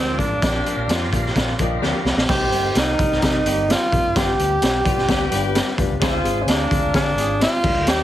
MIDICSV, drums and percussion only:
0, 0, Header, 1, 2, 480
1, 0, Start_track
1, 0, Key_signature, -3, "minor"
1, 0, Tempo, 465839
1, 429, Time_signature, 4, 2, 24, 8
1, 8277, End_track
2, 0, Start_track
2, 0, Title_t, "Drums"
2, 194, Note_on_c, 9, 36, 82
2, 203, Note_on_c, 9, 42, 55
2, 297, Note_off_c, 9, 36, 0
2, 306, Note_off_c, 9, 42, 0
2, 437, Note_on_c, 9, 36, 121
2, 438, Note_on_c, 9, 42, 104
2, 448, Note_on_c, 9, 38, 116
2, 540, Note_off_c, 9, 36, 0
2, 541, Note_off_c, 9, 42, 0
2, 551, Note_off_c, 9, 38, 0
2, 682, Note_on_c, 9, 42, 71
2, 785, Note_off_c, 9, 42, 0
2, 917, Note_on_c, 9, 42, 87
2, 933, Note_on_c, 9, 38, 107
2, 1020, Note_off_c, 9, 42, 0
2, 1036, Note_off_c, 9, 38, 0
2, 1160, Note_on_c, 9, 36, 91
2, 1167, Note_on_c, 9, 42, 76
2, 1263, Note_off_c, 9, 36, 0
2, 1270, Note_off_c, 9, 42, 0
2, 1298, Note_on_c, 9, 38, 33
2, 1399, Note_on_c, 9, 36, 88
2, 1400, Note_on_c, 9, 42, 60
2, 1401, Note_off_c, 9, 38, 0
2, 1413, Note_on_c, 9, 38, 105
2, 1502, Note_off_c, 9, 36, 0
2, 1503, Note_off_c, 9, 42, 0
2, 1516, Note_off_c, 9, 38, 0
2, 1636, Note_on_c, 9, 42, 86
2, 1642, Note_on_c, 9, 36, 92
2, 1739, Note_off_c, 9, 42, 0
2, 1745, Note_off_c, 9, 36, 0
2, 1885, Note_on_c, 9, 38, 58
2, 1988, Note_off_c, 9, 38, 0
2, 2121, Note_on_c, 9, 38, 78
2, 2224, Note_off_c, 9, 38, 0
2, 2244, Note_on_c, 9, 38, 93
2, 2347, Note_off_c, 9, 38, 0
2, 2357, Note_on_c, 9, 49, 103
2, 2360, Note_on_c, 9, 36, 121
2, 2367, Note_on_c, 9, 38, 124
2, 2460, Note_off_c, 9, 49, 0
2, 2463, Note_off_c, 9, 36, 0
2, 2470, Note_off_c, 9, 38, 0
2, 2598, Note_on_c, 9, 42, 75
2, 2701, Note_off_c, 9, 42, 0
2, 2834, Note_on_c, 9, 42, 95
2, 2850, Note_on_c, 9, 38, 107
2, 2937, Note_off_c, 9, 42, 0
2, 2953, Note_off_c, 9, 38, 0
2, 3081, Note_on_c, 9, 42, 76
2, 3082, Note_on_c, 9, 36, 104
2, 3184, Note_off_c, 9, 42, 0
2, 3185, Note_off_c, 9, 36, 0
2, 3212, Note_on_c, 9, 38, 34
2, 3315, Note_off_c, 9, 38, 0
2, 3317, Note_on_c, 9, 42, 66
2, 3323, Note_on_c, 9, 36, 103
2, 3331, Note_on_c, 9, 38, 110
2, 3420, Note_off_c, 9, 42, 0
2, 3426, Note_off_c, 9, 36, 0
2, 3434, Note_off_c, 9, 38, 0
2, 3563, Note_on_c, 9, 42, 92
2, 3666, Note_off_c, 9, 42, 0
2, 3810, Note_on_c, 9, 42, 98
2, 3818, Note_on_c, 9, 38, 123
2, 3913, Note_off_c, 9, 42, 0
2, 3921, Note_off_c, 9, 38, 0
2, 4044, Note_on_c, 9, 36, 83
2, 4051, Note_on_c, 9, 42, 59
2, 4147, Note_off_c, 9, 36, 0
2, 4154, Note_off_c, 9, 42, 0
2, 4286, Note_on_c, 9, 36, 127
2, 4286, Note_on_c, 9, 42, 112
2, 4297, Note_on_c, 9, 38, 127
2, 4389, Note_off_c, 9, 36, 0
2, 4389, Note_off_c, 9, 42, 0
2, 4400, Note_off_c, 9, 38, 0
2, 4527, Note_on_c, 9, 42, 76
2, 4630, Note_off_c, 9, 42, 0
2, 4759, Note_on_c, 9, 42, 95
2, 4775, Note_on_c, 9, 38, 113
2, 4862, Note_off_c, 9, 42, 0
2, 4878, Note_off_c, 9, 38, 0
2, 5003, Note_on_c, 9, 36, 108
2, 5005, Note_on_c, 9, 42, 81
2, 5106, Note_off_c, 9, 36, 0
2, 5108, Note_off_c, 9, 42, 0
2, 5130, Note_on_c, 9, 38, 35
2, 5233, Note_off_c, 9, 38, 0
2, 5238, Note_on_c, 9, 42, 66
2, 5241, Note_on_c, 9, 36, 100
2, 5252, Note_on_c, 9, 38, 113
2, 5341, Note_off_c, 9, 42, 0
2, 5344, Note_off_c, 9, 36, 0
2, 5355, Note_off_c, 9, 38, 0
2, 5477, Note_on_c, 9, 42, 99
2, 5580, Note_off_c, 9, 42, 0
2, 5719, Note_on_c, 9, 42, 96
2, 5728, Note_on_c, 9, 38, 120
2, 5822, Note_off_c, 9, 42, 0
2, 5831, Note_off_c, 9, 38, 0
2, 5957, Note_on_c, 9, 36, 89
2, 5962, Note_on_c, 9, 42, 58
2, 6060, Note_off_c, 9, 36, 0
2, 6065, Note_off_c, 9, 42, 0
2, 6196, Note_on_c, 9, 42, 111
2, 6199, Note_on_c, 9, 36, 126
2, 6207, Note_on_c, 9, 38, 127
2, 6299, Note_off_c, 9, 42, 0
2, 6302, Note_off_c, 9, 36, 0
2, 6310, Note_off_c, 9, 38, 0
2, 6441, Note_on_c, 9, 42, 81
2, 6544, Note_off_c, 9, 42, 0
2, 6673, Note_on_c, 9, 42, 91
2, 6689, Note_on_c, 9, 38, 110
2, 6776, Note_off_c, 9, 42, 0
2, 6792, Note_off_c, 9, 38, 0
2, 6915, Note_on_c, 9, 36, 109
2, 6922, Note_on_c, 9, 42, 81
2, 7018, Note_off_c, 9, 36, 0
2, 7025, Note_off_c, 9, 42, 0
2, 7150, Note_on_c, 9, 42, 71
2, 7153, Note_on_c, 9, 36, 101
2, 7164, Note_on_c, 9, 38, 120
2, 7253, Note_off_c, 9, 42, 0
2, 7256, Note_off_c, 9, 36, 0
2, 7267, Note_off_c, 9, 38, 0
2, 7396, Note_on_c, 9, 42, 90
2, 7499, Note_off_c, 9, 42, 0
2, 7637, Note_on_c, 9, 42, 95
2, 7645, Note_on_c, 9, 38, 127
2, 7740, Note_off_c, 9, 42, 0
2, 7748, Note_off_c, 9, 38, 0
2, 7871, Note_on_c, 9, 36, 104
2, 7871, Note_on_c, 9, 57, 76
2, 7974, Note_off_c, 9, 36, 0
2, 7974, Note_off_c, 9, 57, 0
2, 8106, Note_on_c, 9, 42, 108
2, 8116, Note_on_c, 9, 38, 117
2, 8209, Note_off_c, 9, 42, 0
2, 8219, Note_off_c, 9, 38, 0
2, 8277, End_track
0, 0, End_of_file